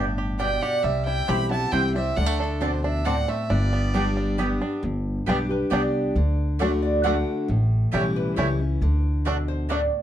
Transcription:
Already playing: upright bass G1, steel-string acoustic guitar G2 A2, five-string banjo B3 D4
0.18 five-string banjo G4
0.39 steel-string acoustic guitar B2, five-string banjo G3, mandolin B3 G4 D5 G5, resonator guitar played with a steel bar D5, fiddle G5
0.62 five-string banjo G4, resonator guitar played with a steel bar D5, fiddle F#5
0.83 upright bass C2, steel-string acoustic guitar C3, five-string banjo G3, resonator guitar played with a steel bar C5, fiddle E5
1.06 five-string banjo E4, resonator guitar played with a steel bar E5, fiddle G5
1.27 upright bass B1, steel-string acoustic guitar E3 G3 C4 E4, mandolin C4 E4 C5 G5, five-string banjo G4, resonator guitar played with a steel bar G5, fiddle B5
1.50 steel-string acoustic guitar C4 E4, five-string banjo E4, resonator guitar played with a steel bar F#5, fiddle A5
1.71 upright bass C2, steel-string acoustic guitar E3 G3 C4 E4, mandolin C4 E4 C5 G5, five-string banjo C4, resonator guitar played with a steel bar E5, fiddle G5
1.94 five-string banjo G3, steel-string acoustic guitar C4 E4, resonator guitar played with a steel bar C5, fiddle E5
2.17 upright bass D2, steel-string acoustic guitar D3, five-string banjo G3, resonator guitar played with a steel bar D5, fiddle F#5
2.26 five-string banjo A3
2.40 five-string banjo D4, fiddle A4, muted resonator guitar played with a steel bar stroke
2.60 steel-string acoustic guitar B2, mandolin C4 F#4 D5 A5, five-string banjo D4, resonator guitar played with a steel bar A4, fiddle C5
2.84 five-string banjo D4, resonator guitar played with a steel bar C5, fiddle E5
3.05 steel-string acoustic guitar A2, mandolin C4 F#4 D5 A5, five-string banjo C4, resonator guitar played with a steel bar D5, fiddle F#5
3.28 five-string banjo A3, resonator guitar played with a steel bar C5, fiddle E5
3.50 upright bass G1, steel-string acoustic guitar G2, five-string banjo G3, resonator guitar played with a steel bar B4, fiddle D5
3.73 five-string banjo B3
3.94 steel-string acoustic guitar G3 B3 D4 G4, mandolin B3 G4 D5 G5, five-string banjo D4
4.17 five-string banjo G3
4.38 steel-string acoustic guitar G3 B3 D4 G4, mandolin B3 G4 D5 G5, five-string banjo B3
4.61 five-string banjo D4, steel-string acoustic guitar D4 G4
4.83 upright bass G1, steel-string acoustic guitar G2
5.26 upright bass B1, steel-string acoustic guitar G3 B3 D4 G4, five-string banjo G3 B3 D4, mandolin B3 G4 D5 G5
5.49 steel-string acoustic guitar D4 G4, resonator guitar played with a steel bar B4
5.70 upright bass C2, steel-string acoustic guitar G3 B3 D4 G4, five-string banjo G3 B3 D4, mandolin B3 G4 D5 G5, resonator guitar played with a steel bar D5
6.15 upright bass D2, steel-string acoustic guitar D3
6.59 steel-string acoustic guitar D3 A3 D4 F#4, mandolin A3 F#4 D5 F#5, five-string banjo A3 D4
6.82 resonator guitar played with a steel bar D5
7.04 steel-string acoustic guitar D3 A3 D4 F#4, mandolin A3 F#4 D5 F#5, five-string banjo A3 D4, resonator guitar played with a steel bar F#5
7.48 upright bass A1, steel-string acoustic guitar A2
7.92 upright bass B1, steel-string acoustic guitar E3 G3 C#4 E4, five-string banjo G3 C#4 E4, mandolin A3 E4 C#5 G5
8.16 resonator guitar played with a steel bar B4
8.36 upright bass C#2, steel-string acoustic guitar E3 G3 C#4 E4, five-string banjo G3 C#4 E4, mandolin A3 E4 C#5 G5, resonator guitar played with a steel bar C#5
8.60 steel-string acoustic guitar C#4 E4
8.81 upright bass D2, steel-string acoustic guitar D3
9.25 steel-string acoustic guitar B2, mandolin A3 F#4 D5 F#5, five-string banjo A3 D4
9.48 resonator guitar played with a steel bar C5
9.69 steel-string acoustic guitar A2, mandolin A3 F#4 D5 F#5, five-string banjo A3 D4, resonator guitar played with a steel bar D5

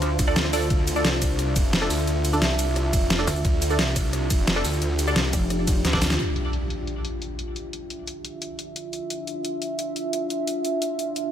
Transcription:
Already playing: wobble bass D2, ambient pad D4 F4 C5
0.02 cross-stick, closed hi-hat
0.19 detuned saw bass D2, kick, closed hi-hat, ride, shaker
0.27 synth stab D4 A4 D5
0.36 snare, closed hi-hat, shaker
0.45 cross-stick
0.53 synth stab D4 A4 D5, open hi-hat, ride, shaker
0.62 shaker
0.70 detuned saw bass D2, ambient pad E5, kick, closed hi-hat
0.87 closed hi-hat, ride, shaker
0.96 synth stab D4 A4 D5, shaker
1.05 detuned saw bass C2, snare, closed hi-hat
1.22 kick, cross-stick, closed hi-hat, ride, shaker
1.39 cross-stick, closed hi-hat
1.56 detuned saw bass F1, kick, closed hi-hat, ride, shaker
1.73 snare, closed hi-hat, shaker
1.82 synth stab D4 A4 D5, cross-stick
1.90 detuned saw bass D2, open hi-hat, ride, shaker
1.99 shaker
2.07 detuned saw bass D2, closed hi-hat
2.25 closed hi-hat, ride, shaker
2.33 synth stab D4 A4 D5, shaker
2.42 detuned saw bass C2, snare, closed hi-hat
2.59 closed hi-hat, ride, shaker
2.76 cross-stick, closed hi-hat
2.93 detuned saw bass F1, kick, closed hi-hat, ride, shaker
3.10 snare, closed hi-hat, shaker
3.19 synth stab D4 A4 D5, cross-stick
3.27 wobble bass D2, open hi-hat, ride, shaker
3.36 shaker
3.45 detuned saw bass D2, ambient pad G4, kick, closed hi-hat
3.62 closed hi-hat, ride, shaker
3.70 synth stab D4 A4 D5, shaker
3.79 detuned saw bass C2, snare, closed hi-hat
3.96 kick, cross-stick, closed hi-hat, ride, shaker
4.13 cross-stick, closed hi-hat
4.30 detuned saw bass F1, kick, closed hi-hat, ride, shaker
4.47 snare, closed hi-hat, shaker
4.56 synth stab D4 A4 D5, cross-stick
4.65 detuned saw bass D2, open hi-hat, ride, shaker
4.73 shaker
4.82 detuned saw bass D2, closed hi-hat
4.99 closed hi-hat, ride, shaker
5.07 synth stab D4 A4 D5, shaker
5.16 detuned saw bass C2, snare, closed hi-hat
5.33 wobble bass F1, kick, closed hi-hat, ride, shaker
5.50 cross-stick, closed hi-hat
5.67 kick, closed hi-hat, ride, shaker
5.85 wobble bass D2, snare, closed hi-hat, shaker
5.93 synth stab D4 A4 D5, kick, snare
6.02 snare, open hi-hat, ride, shaker
6.10 snare, shaker
6.19 ambient pad D4 F4 E5, closed hi-hat, impact
6.36 closed hi-hat
6.53 closed hi-hat
6.70 closed hi-hat
6.87 closed hi-hat
7.05 closed hi-hat
7.22 closed hi-hat
7.39 closed hi-hat
7.56 closed hi-hat
7.73 closed hi-hat
7.90 closed hi-hat
8.07 closed hi-hat
8.25 closed hi-hat
8.42 closed hi-hat
8.59 closed hi-hat
8.76 closed hi-hat
8.93 closed hi-hat
9.10 closed hi-hat
9.27 closed hi-hat
9.45 closed hi-hat
9.62 closed hi-hat
9.79 closed hi-hat
9.96 closed hi-hat
10.13 closed hi-hat
10.30 closed hi-hat
10.47 closed hi-hat
10.65 closed hi-hat
10.82 closed hi-hat
10.99 closed hi-hat
11.16 closed hi-hat

